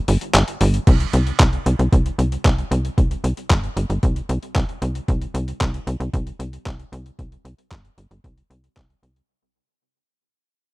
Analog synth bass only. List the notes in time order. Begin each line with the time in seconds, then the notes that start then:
0.08 G1
0.34 G1
0.61 G1
0.87 C2
1.14 C2
1.40 C2
1.66 C2
1.79 C2
1.93 C2
2.19 C2
2.45 C2
2.71 C2
2.98 C2
3.24 C2
3.50 G1
3.77 G1
3.90 G1
4.03 C2
4.29 C2
4.56 C2
4.82 C2
5.08 C2
5.34 C2
5.61 C2
5.87 C2
6.00 C2
6.13 C2
6.39 C2
6.66 C2
6.92 C2
7.19 C2
7.45 C2
7.71 G1
7.98 G1
8.11 G1
8.24 C2
8.50 C2
8.77 C2
9.03 C2